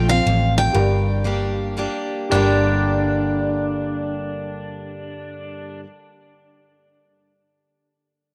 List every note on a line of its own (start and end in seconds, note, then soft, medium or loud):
0.00 0.19 A#1 medium
0.00 0.23 F2 medium
0.00 0.70 F4 medium
0.00 0.71 A4 medium
0.00 0.72 C5 medium
0.09 0.26 C4 soft
0.09 0.25 F4 medium
0.09 0.54 F5 medium
0.26 0.67 A1 medium
0.26 0.73 F2 medium
0.58 1.73 G5 medium
0.72 1.85 G1 medium
0.72 1.73 G2 medium
0.72 2.28 G4 medium
0.72 2.29 A#4 medium
0.72 2.30 D5 medium
1.24 1.75 G3 medium
1.24 1.75 A#3 medium
1.24 1.76 D4 medium
1.24 1.76 G4 medium
1.77 2.30 G3 medium
1.77 2.31 A#3 medium
1.77 2.31 D4 medium
1.77 2.31 G4 medium
2.29 5.80 G1 medium
2.29 5.84 G2 medium
2.29 5.84 D3 medium
2.29 5.85 G3 medium
2.29 5.77 G4 medium
2.29 5.80 A#4 medium
2.29 5.79 G5 medium
2.34 5.86 A#3 medium
2.34 5.87 D4 medium
2.34 5.87 G4 medium
2.34 5.83 D5 medium